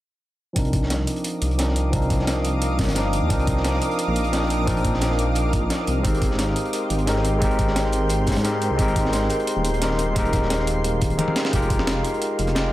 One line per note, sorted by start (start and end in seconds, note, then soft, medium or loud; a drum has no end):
0.53 1.06 C2 medium
0.53 1.55 F3 medium
0.53 1.56 C4 medium
0.53 1.57 D4 medium
0.53 11.49 A#4 medium
0.53 6.01 F5 medium
0.53 6.01 D6 medium
0.53 6.01 D#6 medium
0.53 kick loud
0.53 closed hi-hat medium
0.58 1.58 D#4 medium
0.58 1.58 A#4 loud
0.65 closed hi-hat soft
0.73 kick loud
0.73 closed hi-hat medium
0.83 snare medium
0.90 snare loud
0.90 closed hi-hat medium
1.00 snare soft
1.07 closed hi-hat medium
1.16 closed hi-hat soft
1.24 closed hi-hat medium
1.42 2.86 C2 loud
1.42 closed hi-hat medium
1.51 closed hi-hat soft
1.57 1.65 F3 medium
1.57 1.65 C4 medium
1.57 1.65 D4 medium
1.57 1.66 D#4 medium
1.57 1.66 A#4 medium
1.57 snare loud
1.57 closed hi-hat medium
1.68 snare medium
1.76 closed hi-hat medium
1.90 2.93 F3 medium
1.90 2.93 C4 medium
1.90 2.94 D4 medium
1.90 kick loud
1.90 closed hi-hat medium
1.95 2.95 D#4 medium
1.95 2.96 A#4 loud
2.02 closed hi-hat soft
2.10 kick loud
2.10 closed hi-hat medium
2.19 snare medium
2.27 snare loud
2.27 closed hi-hat medium
2.36 snare soft
2.45 closed hi-hat medium
2.62 closed hi-hat medium
2.79 kick loud
2.79 snare medium
2.79 closed hi-hat medium
2.84 snare medium
2.84 closed hi-hat medium
2.88 3.21 G1 medium
2.88 snare loud
2.88 closed hi-hat medium
2.95 3.02 F3 medium
2.95 3.02 C4 medium
2.95 3.03 D4 medium
2.95 3.03 D#4 medium
2.95 3.03 A#4 medium
2.95 snare loud
2.95 closed hi-hat medium
3.13 closed hi-hat medium
3.22 3.29 D#2 loud
3.27 3.80 C2 loud
3.27 4.30 F3 medium
3.27 4.30 C4 medium
3.27 4.31 D4 medium
3.27 kick loud
3.27 closed hi-hat medium
3.32 4.32 D#4 medium
3.32 4.33 A#4 loud
3.39 closed hi-hat soft
3.47 kick loud
3.47 closed hi-hat medium
3.57 snare soft
3.64 snare loud
3.64 closed hi-hat medium
3.74 snare soft
3.82 closed hi-hat medium
3.91 closed hi-hat soft
3.99 closed hi-hat medium
4.08 5.69 A#1 loud
4.16 closed hi-hat medium
4.24 closed hi-hat soft
4.32 4.39 F3 medium
4.32 4.39 C4 medium
4.32 4.40 D4 medium
4.32 4.40 D#4 medium
4.32 4.40 A#4 medium
4.32 snare loud
4.32 closed hi-hat medium
4.43 snare medium
4.50 closed hi-hat medium
4.64 5.67 F3 medium
4.64 5.68 C4 medium
4.64 5.68 D4 medium
4.64 kick loud
4.64 closed hi-hat medium
4.69 5.69 D#4 medium
4.69 5.70 A#4 medium
4.77 closed hi-hat soft
4.84 kick loud
4.84 closed hi-hat medium
4.94 snare medium
5.01 snare loud
5.01 closed hi-hat medium
5.11 snare soft
5.19 closed hi-hat medium
5.35 closed hi-hat medium
5.53 kick loud
5.53 closed hi-hat medium
5.70 snare loud
5.70 closed hi-hat medium
5.87 6.03 C2 loud
5.87 closed hi-hat medium
6.02 6.55 G#1 loud
6.02 7.04 G#3 medium
6.02 7.05 C4 medium
6.02 7.05 D#4 medium
6.02 8.76 G5 medium
6.02 11.49 C6 medium
6.02 kick loud
6.02 closed hi-hat medium
6.06 7.06 G4 medium
6.06 7.07 A#4 loud
6.14 closed hi-hat soft
6.22 kick loud
6.22 closed hi-hat medium
6.31 snare medium
6.39 snare loud
6.39 closed hi-hat medium
6.48 snare soft
6.56 closed hi-hat medium
6.65 closed hi-hat soft
6.73 closed hi-hat medium
6.90 8.35 G#1 loud
6.90 closed hi-hat medium
6.99 closed hi-hat soft
7.06 7.13 G#3 medium
7.06 7.14 C4 medium
7.06 7.14 D#4 medium
7.06 7.14 G4 medium
7.06 7.15 A#4 medium
7.06 snare loud
7.06 closed hi-hat medium
7.16 snare medium
7.25 closed hi-hat medium
7.39 8.41 G#3 medium
7.39 8.42 C4 medium
7.39 8.43 D#4 medium
7.39 kick loud
7.39 closed hi-hat medium
7.43 8.43 G4 medium
7.43 8.44 A#4 loud
7.51 closed hi-hat soft
7.59 kick loud
7.59 closed hi-hat medium
7.68 snare medium
7.76 snare loud
7.76 closed hi-hat medium
7.85 snare medium
7.92 closed hi-hat medium
8.09 closed hi-hat medium
8.27 kick loud
8.27 snare medium
8.27 closed hi-hat medium
8.32 snare medium
8.32 closed hi-hat medium
8.36 8.69 G#2 medium
8.36 snare loud
8.36 closed hi-hat medium
8.43 8.50 G#3 medium
8.43 8.51 C4 medium
8.43 8.51 D#4 medium
8.43 8.51 G4 medium
8.43 8.52 A#4 medium
8.43 snare loud
8.43 closed hi-hat medium
8.62 closed hi-hat medium
8.71 8.78 C2 loud
8.76 9.29 G#1 loud
8.76 9.78 G#3 medium
8.76 9.79 C4 medium
8.76 9.80 D#4 medium
8.76 11.50 F5 medium
8.76 kick loud
8.76 closed hi-hat medium
8.80 9.81 G4 medium
8.80 9.81 A#4 loud
8.88 closed hi-hat soft
8.96 kick loud
8.96 closed hi-hat medium
9.05 snare medium
9.13 snare loud
9.13 closed hi-hat medium
9.23 snare soft
9.29 closed hi-hat medium
9.39 closed hi-hat soft
9.47 closed hi-hat medium
9.56 11.19 D#1 loud
9.65 closed hi-hat medium
9.74 closed hi-hat soft
9.80 9.88 G#3 medium
9.80 9.88 C4 medium
9.80 9.88 D#4 medium
9.80 9.89 G4 medium
9.80 9.89 A#4 medium
9.80 snare loud
9.80 closed hi-hat medium
9.91 snare medium
9.99 closed hi-hat medium
10.13 11.15 G#3 medium
10.13 11.16 C4 medium
10.13 11.17 D#4 medium
10.13 kick loud
10.13 closed hi-hat medium
10.17 11.18 G4 medium
10.17 11.18 A#4 medium
10.25 closed hi-hat soft
10.33 kick loud
10.33 closed hi-hat medium
10.42 snare medium
10.50 snare loud
10.50 closed hi-hat medium
10.59 snare soft
10.67 closed hi-hat medium
10.84 closed hi-hat medium
11.01 kick loud
11.01 closed hi-hat medium
11.10 closed hi-hat soft
11.17 11.25 G#3 medium
11.17 11.25 C4 medium
11.17 11.25 D#4 medium
11.17 11.26 G4 medium
11.17 11.26 A#4 medium
11.17 closed hi-hat loud
11.17 high tom medium
11.28 high tom medium
11.36 snare loud
11.36 snare medium
11.36 closed hi-hat medium
11.45 snare medium
11.45 snare soft
11.50 12.03 F1 loud
11.50 12.53 G#3 medium
11.50 12.73 G#3 medium
11.50 12.53 D#4 medium
11.50 12.54 F4 medium
11.50 12.73 D#5 medium
11.50 12.73 G5 medium
11.50 12.73 A#5 medium
11.50 kick loud
11.50 closed hi-hat medium
11.55 12.55 G4 medium
11.55 12.56 A#4 loud
11.62 closed hi-hat soft
11.70 kick loud
11.70 closed hi-hat medium
11.79 snare soft
11.79 snare medium
11.87 snare loud
11.87 closed hi-hat loud
11.87 closed hi-hat medium
11.97 snare soft
12.04 closed hi-hat medium
12.14 closed hi-hat soft
12.22 closed hi-hat loud
12.22 closed hi-hat medium
12.39 12.73 F1 medium
12.39 closed hi-hat medium
12.47 snare soft
12.47 closed hi-hat soft
12.55 12.62 G#3 medium
12.55 12.62 D#4 medium
12.55 12.63 F4 medium
12.55 12.63 G4 medium
12.55 12.63 A#4 medium
12.55 snare loud
12.55 closed hi-hat loud
12.55 closed hi-hat medium
12.65 snare medium